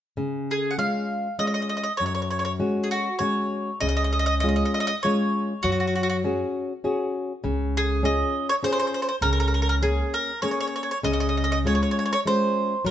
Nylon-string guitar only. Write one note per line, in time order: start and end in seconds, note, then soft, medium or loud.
0.17 0.76 C#3 medium
0.78 1.27 G#3 soft
0.78 1.27 C#4 soft
0.78 1.27 F4 soft
1.39 1.87 G#3 soft
1.39 1.87 C#4 soft
1.39 1.88 F4 soft
2.00 2.58 F#2 medium
2.59 3.08 G#3 soft
2.59 3.08 C#4 soft
2.59 3.08 F#4 soft
3.20 3.69 G#3 soft
3.20 3.70 C#4 soft
3.20 3.70 F#4 soft
3.81 4.41 C#3 medium
4.43 4.92 G#3 soft
4.43 4.92 C#4 soft
4.43 4.92 F4 soft
5.05 5.52 G#3 soft
5.05 5.52 C#4 soft
5.05 5.53 F4 soft
5.64 6.22 F#3 medium
6.24 6.72 C#4 soft
6.24 6.72 F#4 soft
6.24 6.72 G#4 soft
6.84 7.32 C#4 soft
6.84 7.32 F#4 soft
6.84 7.32 G#4 soft
7.44 8.01 C#3 medium
8.03 8.50 C#4 soft
8.03 8.50 F4 soft
8.03 8.50 G#4 soft
8.63 9.10 C#4 soft
8.63 9.10 F4 soft
8.63 9.11 G#4 soft
9.23 9.80 C#3 medium
9.82 10.30 A#3 soft
9.82 10.31 C#4 soft
9.82 10.31 G#4 soft
10.42 10.92 A#3 soft
10.42 10.92 C#4 soft
10.42 10.92 G#4 soft
11.03 11.63 C#3 medium
11.65 12.14 G#3 soft
11.65 12.14 C#4 soft
11.65 12.14 F4 soft
12.25 12.73 G#3 soft
12.25 12.74 C#4 soft
12.25 12.74 F4 soft
12.85 12.91 F#3 medium